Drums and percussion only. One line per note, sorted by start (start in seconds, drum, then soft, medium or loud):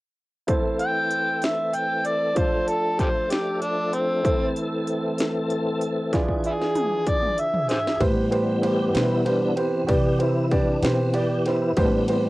0.48 kick medium
0.48 closed hi-hat medium
0.79 closed hi-hat soft
1.11 closed hi-hat soft
1.42 snare medium
1.42 closed hi-hat medium
1.73 closed hi-hat medium
2.05 closed hi-hat soft
2.36 kick medium
2.36 closed hi-hat medium
2.68 closed hi-hat medium
2.99 kick medium
2.99 closed hi-hat soft
3.31 snare medium
3.31 closed hi-hat medium
3.62 closed hi-hat medium
3.93 closed hi-hat soft
4.25 kick medium
4.25 closed hi-hat medium
4.56 closed hi-hat soft
4.87 closed hi-hat soft
5.18 snare medium
5.18 closed hi-hat medium
5.50 closed hi-hat soft
5.81 closed hi-hat soft
6.13 kick medium
6.13 snare soft
6.13 closed hi-hat medium
6.28 kick soft
6.44 closed hi-hat medium
6.62 snare soft
6.75 closed hi-hat medium
6.75 mid tom medium
7.07 kick medium
7.07 closed hi-hat medium
7.23 mid tom medium
7.38 closed hi-hat medium
7.54 floor tom medium
7.69 snare medium
7.69 closed hi-hat medium
7.87 snare medium
8.01 kick loud
8.01 ride medium
8.32 ride medium
8.63 ride medium
8.95 snare loud
8.95 ride medium
9.26 ride medium
9.57 ride medium
9.89 kick loud
9.89 ride medium
10.20 ride medium
10.51 kick medium
10.51 ride medium
10.83 snare loud
10.83 ride medium
11.14 ride medium
11.46 snare soft
11.46 ride medium
11.77 kick loud
11.77 ride medium
12.08 ride medium